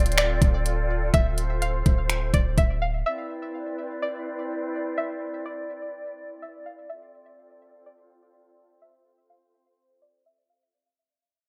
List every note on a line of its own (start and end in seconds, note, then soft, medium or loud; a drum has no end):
0.00 0.40 D1 loud
0.00 2.76 C4 medium
0.00 2.80 F4 medium
0.00 2.82 A4 medium
0.00 1.12 D5 medium
0.00 0.14 E5 loud
0.06 closed hi-hat medium
0.12 closed hi-hat medium
0.18 1.10 D5 medium
0.18 finger snap loud
0.18 closed hi-hat medium
0.42 1.11 D1 loud
0.42 kick loud
0.42 closed hi-hat medium
0.66 closed hi-hat medium
1.14 1.83 D1 loud
1.14 2.78 C5 medium
1.14 1.59 E5 loud
1.14 kick loud
1.14 closed hi-hat medium
1.38 closed hi-hat medium
1.62 2.30 F5 medium
1.62 closed hi-hat medium
1.86 2.32 D1 loud
1.86 kick loud
1.86 closed hi-hat medium
2.10 finger snap loud
2.10 closed hi-hat medium
2.34 2.57 D1 loud
2.34 2.57 D5 medium
2.34 kick medium
2.34 closed hi-hat medium
2.58 3.04 D1 loud
2.58 2.81 E5 medium
2.58 kick loud
2.58 closed hi-hat medium
2.82 3.05 F5 medium
3.06 6.86 C4 medium
3.06 6.86 E4 medium
3.06 6.86 B4 medium
3.06 8.78 D5 medium
3.06 3.98 E5 loud
4.02 4.94 D5 medium
4.98 5.43 E5 loud
5.46 6.38 D5 medium
6.42 6.65 E5 medium
6.66 6.89 F5 medium
6.89 10.70 C4 medium
6.89 10.70 F4 medium
6.89 10.70 A4 medium
6.89 7.82 E5 loud
7.86 8.78 D5 medium
8.82 10.72 C5 medium
8.82 9.27 E5 loud
9.30 9.98 F5 medium
10.02 10.25 D5 medium
10.26 10.49 E5 medium
10.50 10.72 F5 medium